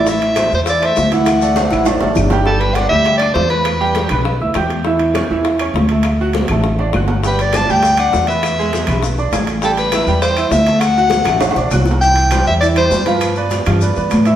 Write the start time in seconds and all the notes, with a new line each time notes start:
Already playing: A1 D5
0.06 E3 E4 E5, high bongo, high conga, maracas
0.22 high conga, high timbale
0.36 A3 A4 C5, high bongo, high conga, high timbale, claves, maracas
0.52 E2 C5, high conga, maracas
0.66 E3 E4 D5 E5, high bongo, high conga, high timbale, maracas
0.81 A3 A4 C5 E5, high conga, high timbale, claves
0.96 D2, high bongo, low bongo, high conga, maracas
1.11 E3 E4 E5 F#5, high conga, high timbale, maracas
1.26 high bongo, high conga, high timbale, claves, maracas
1.41 A3 A4 D5, high bongo, high conga, maracas
1.56 high bongo, high conga, high timbale, maracas
1.71 A1 E3 E4 E5, low bongo, high conga, claves, maracas
1.85 A3 A4 D5, low bongo, high conga, high timbale, maracas
2.00 A1 A3 A4 D5, low bongo, low conga, low timbale
2.15 G1, low bongo, low conga, low timbale, claves, maracas
2.30 G3 G4 G5, low bongo, low conga, low timbale, maracas
2.46 G3 G4 A4 G5, high bongo, high conga
2.60 B4, high conga, high timbale
2.74 D4 D5 F#5 D6, high bongo, high conga, high timbale, claves
2.89 D2 G3 G4 E5 G5, high conga
3.05 high bongo, high conga, high timbale
3.18 D4 D5, high timbale
3.22 D5 D6, claves
3.34 E2 C5, high bongo, low bongo, high conga
3.50 B3 B4 B5, high timbale
3.65 high bongo, high conga, high timbale, claves
3.80 G3 G4 G5, high bongo, high conga
3.95 high bongo, high conga, high timbale
4.09 B1 B3 B4 B5, high conga, low conga, high timbale, claves
4.25 high bongo, high conga
4.40 D2 E4 E5 E6, high bongo, high conga
4.54 E2 G4 G5 G6, high bongo, low bongo, high conga, high timbale, claves
4.70 high bongo, high conga, high timbale
4.85 E3 E4 E5, high bongo, high conga
4.99 high conga, high timbale
5.15 C#4 C#5 C#6, high bongo, high conga, high timbale, claves
5.30 E2 E3 E4 E5, high conga
5.45 high bongo, high conga, high timbale
5.59 C#4 C#5 C#6, high conga, high timbale, claves
5.74 D2, high bongo, low bongo, high conga
5.89 A3 A4 A5, high timbale
6.03 high bongo, high conga, high timbale, claves
6.20 F#3 F#4 F#5, high bongo, high conga
6.33 high bongo, high conga, high timbale
6.48 A1 A3 A4 A5, high conga, low conga, high timbale, claves
6.64 high bongo, high conga
6.79 D4 D5 D6, high bongo, high conga, high timbale
6.93 G1 F#4 F#5 F#6, high bongo, low bongo, high conga, claves
7.08 high bongo, high conga, low timbale
7.24 G3 G4 B4 G5, high bongo, high conga, maracas
7.39 D5, high conga, high timbale, maracas
7.53 D4 D5 A5 D6, high bongo, high conga, high timbale, claves, maracas
7.69 D2 G3 G4 G5, high conga, maracas
7.83 high bongo, high conga, high timbale, maracas
7.97 D4 D5 F#5 D6, high conga, high timbale, claves, maracas
8.12 E2, high bongo, low bongo, high conga, low timbale, maracas
8.27 B3 B4 E5 B5, high timbale, maracas
8.43 high bongo, high conga, high timbale, claves, maracas
8.59 G#3 G#4 G#5, high bongo, high conga, maracas
8.73 high bongo, high conga, high timbale, maracas
8.87 B1 B3 B4 B5, high conga, low conga, high timbale, claves, maracas
9.03 high bongo, high conga, maracas
9.18 D4 D5 D6, high bongo, high conga, maracas
9.32 A1 G#4 G#5 G#6, high bongo, low bongo, high conga, high timbale, low timbale, claves, maracas
9.47 high bongo, high conga, high timbale, maracas
9.62 G3 G4 A4 G5, high bongo, high conga, maracas
9.77 B4, high conga, high timbale, maracas
9.92 E4 E5 E6, high bongo, high conga, high timbale, claves, maracas
10.07 E2 G3 G4 G5, high conga, maracas
10.22 C5, high bongo, high conga, high timbale, maracas
10.36 E4 E5 E6, high conga, high timbale, claves, maracas
10.51 D2 E5, high bongo, low bongo, high conga, low timbale, maracas
10.67 A3 A4 A5, high conga, high timbale, maracas
10.80 F#5, high bongo, high conga, high timbale, claves, maracas
10.96 F#3 F#4 F#5, high bongo, high conga, maracas
11.10 high bongo, high conga, high timbale, maracas
11.24 A1 A3 A4 A5, high bongo, high conga, low conga, high timbale, claves, maracas
11.41 high bongo, high conga, low conga, high timbale, maracas
11.51 high timbale
11.56 B1 D4 D5 D6, low bongo, high conga, maracas
11.71 C2 F#4 F#5 F#6, high conga, low timbale, claves, maracas
11.81 low timbale
11.85 low bongo, high conga, maracas
11.91 low timbale
12.01 E3 E4 E5 G5, high conga, maracas
12.16 high conga, high timbale, maracas
12.31 G3 G4 C5, high conga, high timbale, claves, maracas
12.46 E2 E5, high conga, maracas
12.61 E3 E4 D5 E5, high timbale, maracas
12.76 G3 G4 C5, high conga, high timbale, claves, maracas
12.91 G2, high conga, low timbale, maracas
13.06 F3 F4 B4 F5, high conga, high timbale, maracas
13.21 high conga, high timbale, claves, maracas
13.36 B3 B4 D5, high conga, maracas
13.50 high conga, high timbale, maracas
13.65 G2 F3 F4 F5, high conga, low conga, high timbale, claves, maracas
13.81 B3 B4 D5, high conga, maracas
13.96 G2 B3 B4 D5, high conga, maracas
14.10 A2, high conga, high timbale, low timbale, claves, maracas
14.25 E3 E4 E5, high conga, high timbale, maracas